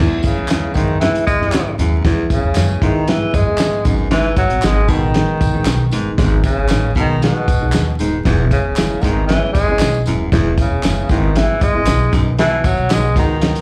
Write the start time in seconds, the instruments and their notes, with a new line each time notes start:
Already playing: upright piano E3
0.00 baritone saxophone E2, upright bass E2, upright piano G#3 B3 E4, snare
0.23 tenor saxophone C#3, kick, closed hi-hat, tambourine
0.37 upright bass E2
0.48 upright piano E3 G#3 B3 E4, snare, clap, closed hi-hat, tambourine
0.74 upright bass F#2, baritone saxophone G#2, tenor saxophone D#3, upright piano E3 G#3 B3 E4, kick, closed hi-hat, tambourine
1.00 tenor saxophone E3, upright piano E3 G#3 B3 E4, snare, closed hi-hat, tambourine
1.15 closed hi-hat
1.27 upright bass G#2, tenor saxophone G#3, kick, closed hi-hat, tambourine
1.39 upright bass F#2, upright piano E3 G#3 B3 E4, snare
1.52 upright bass G#2, snare, clap, closed hi-hat, tambourine
1.78 upright bass D#2, baritone saxophone F#2, upright piano E3 G#3 B3 E4, closed hi-hat, tambourine
2.04 upright bass E2, baritone saxophone E2, upright piano E3 G#3 B3 E4, kick, snare, closed hi-hat, tambourine
2.30 tenor saxophone C#3, kick, closed hi-hat, tambourine
2.43 upright bass E2
2.55 upright bass F#2, upright piano E3 G#3 B3 E4, snare, clap, closed hi-hat, tambourine
2.82 upright bass G#2, baritone saxophone G#2, tenor saxophone D#3, upright piano E3 G#3 B3 E4, kick, closed hi-hat
3.07 upright piano E3 G#3 B3 E4, tenor saxophone E3, snare, closed hi-hat, tambourine
3.34 upright bass F#2, tenor saxophone G#3, kick, closed hi-hat, tambourine
3.46 upright bass G#2, upright piano E3 G#3 B3 E4
3.58 snare, clap, closed hi-hat, tambourine
3.84 upright bass G#1, baritone saxophone F#2, upright piano D#3 G#3 B3 D#4, kick, closed hi-hat, tambourine
4.11 baritone saxophone G#2, tenor saxophone E3, snare, closed hi-hat, tambourine
4.36 tenor saxophone F#3, kick, closed hi-hat, tambourine
4.49 upright bass G#1, closed hi-hat
4.62 upright bass G#1, upright piano D#3 G#3 B3 D#4, tenor saxophone G#3, snare, clap, closed hi-hat, tambourine
4.88 upright bass A1, baritone saxophone B2, upright piano D#3 G#3 B3 D#4, tenor saxophone D#3, kick, closed hi-hat, tambourine
5.14 upright piano D#3 G#3 B3 D#4, snare, closed hi-hat
5.41 upright bass B1, kick, closed hi-hat, tambourine
5.53 upright bass A1, upright piano D#3 G#3 B3 D#4
5.65 upright bass B1, snare, clap, closed hi-hat, tambourine
5.91 upright bass G1, baritone saxophone G#2, upright piano D#3 G#3 B3 D#4, closed hi-hat, tambourine
6.18 upright bass G#1, baritone saxophone G#2, upright piano D#3 G#3 B3 D#4, kick, snare, closed hi-hat, tambourine
6.44 tenor saxophone C#3, kick, closed hi-hat, tambourine
6.57 upright bass G#1
6.69 upright bass A1, upright piano D#3 G#3 B3 D#4, snare, clap, closed hi-hat, tambourine
6.95 upright bass B1, baritone saxophone B2, upright piano D#3 G#3 B3 D#4, tenor saxophone D#3, kick, closed hi-hat
7.21 tenor saxophone B2, upright piano D#3 G#3 B3 D#4, snare, closed hi-hat, tambourine
7.48 upright bass A1, kick, closed hi-hat, tambourine
7.60 upright bass B1, upright piano D#3 G#3 B3 D#4
7.72 upright bass D#2, snare, clap, closed hi-hat, tambourine
7.99 upright bass D#1, baritone saxophone G#2, upright piano D#3 G#3 B3 D#4, closed hi-hat, tambourine
8.25 upright bass E1, baritone saxophone E2, upright piano E3 G#3 B3 E4, kick, snare, closed hi-hat, tambourine
8.51 tenor saxophone C#3, kick, closed hi-hat, tambourine
8.64 upright bass E1
8.76 upright bass F#1, upright piano E3 G#3 B3 E4, snare, clap, closed hi-hat, tambourine
9.01 upright bass G#1, baritone saxophone G#2, tenor saxophone D#3, upright piano E3 G#3 B3 E4, kick, closed hi-hat, tambourine
9.27 tenor saxophone E3, upright piano E3 G#3 B3 C#4, snare, closed hi-hat, tambourine
9.53 upright bass F#1, tenor saxophone G#3, kick, closed hi-hat, tambourine
9.67 upright bass G#1, upright piano E3 G#3 B3 C#4
9.79 upright bass B1, snare, clap, closed hi-hat, tambourine
10.06 upright bass D#1, baritone saxophone F#2, upright piano E3 G#3 B3 E4, closed hi-hat, tambourine
10.32 upright bass E1, baritone saxophone E2, upright piano E3 G#3 B3 E4, kick, snare, closed hi-hat, tambourine
10.58 tenor saxophone C#3, kick, closed hi-hat, tambourine
10.70 upright bass E1
10.83 upright bass F#1, upright piano E3 G#3 B3 E4, snare, clap, closed hi-hat, tambourine
11.09 upright bass G#1, baritone saxophone G#2, tenor saxophone D#3, upright piano E3 G#3 B3 E4, kick, closed hi-hat, tambourine
11.35 upright piano E3 G#3 B3 E4, tenor saxophone E3, snare, closed hi-hat, tambourine
11.61 upright bass F#1, tenor saxophone G#3, kick, closed hi-hat, tambourine
11.74 upright bass G#1, upright piano E3 G#3 B3 E4
11.86 upright bass B1, snare, clap, closed hi-hat, tambourine
12.12 upright bass B1, baritone saxophone F#2, upright piano D#3 F#3 B3 D#4, kick, closed hi-hat, tambourine
12.39 baritone saxophone B2, tenor saxophone E3, snare, closed hi-hat, tambourine
12.64 tenor saxophone F#3, kick, closed hi-hat, tambourine
12.77 upright bass B1
12.90 upright bass B1, upright piano D#3 F#3 B3 D#4, tenor saxophone G#3, snare, clap, closed hi-hat, tambourine
13.16 upright bass C#2, baritone saxophone G#2, upright piano D#3 F#3 B3 F#4, tenor saxophone D#3, kick, closed hi-hat, tambourine
13.42 upright piano D#3 F#3 B3 D#4, snare, closed hi-hat, tambourine
13.55 closed hi-hat